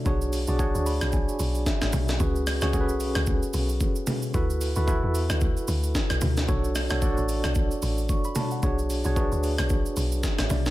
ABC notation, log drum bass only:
X:1
M:4/4
L:1/16
Q:"Swing 16ths" 1/4=112
K:Bdor
V:1 name="Log drum bass" clef=bass
B,,,3 B,,,2 D,,2 B,,,2 z B,,,2 z G,,, B,,,2 | C,,3 C,,2 B,,,2 C,,2 z B,,,2 z4 | D,,3 D,,2 E,,2 D,,2 z D,,2 z B,,, D,,2 | B,,,3 B,,,2 A,,,2 B,,,2 z A,,,2 z4 |
B,,,3 B,,,2 D,,2 B,,,2 z B,,,2 z G,,, B,,,2 |]